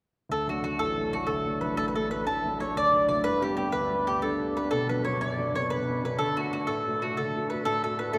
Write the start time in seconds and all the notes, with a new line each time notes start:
0.29 D2 A4
0.47 F#3 A3 D4 F#4
0.62 F#3 A3 D4 F#4
0.79 A1 A4
0.97 F#3 A3 D4
1.12 F#3 A3 D4 F#4
1.27 D2 A4
1.46 F#3 A3 D4
1.61 F#3 A3 D4 B4
1.77 A1 A4
1.88 B4
1.96 F#3 A3 D4 A4
2.11 F#3 A3 D4 B4
2.27 A1 A4
2.44 F#3 A3 D4
2.60 F#3 A3 D4 C#5
2.76 D2 D5
2.93 F#3 A3 D4
3.08 F#3 A3 D4 D5
3.24 G2 B4
3.41 G3 B3 D4 G4
3.57 G3 B3 D4 G4
3.72 D2 B4
3.90 G3 B3 D4
4.07 G3 B3 D4 G4
4.22 G2 A4
4.40 G3 B3 D4
4.56 G3 B3 D4 B4
4.71 B2 A4
4.89 F#3 B3 D4 B4
5.04 F#3 B3 D4 C#5
5.21 F#2 D5
5.37 F#3 B3 D4
5.54 F#3 B3 D4 C#5
5.70 B2 B4
5.87 F#3 B3 D4
6.03 F#3 B3 D4 B4
6.18 D3 A4
6.37 A3 D4 F#4
6.52 A3 D4 F#4
6.67 A2 A4
6.86 A3 D4 F#4
7.02 A3 D4 F#4
7.17 D3 A4
7.35 A3 D4 F#4
7.50 A3 D4 F#4 B4
7.65 A2 A4
7.83 A3 D4 F#4 A4
7.99 A3 D4 F#4 B4
8.13 A2 A4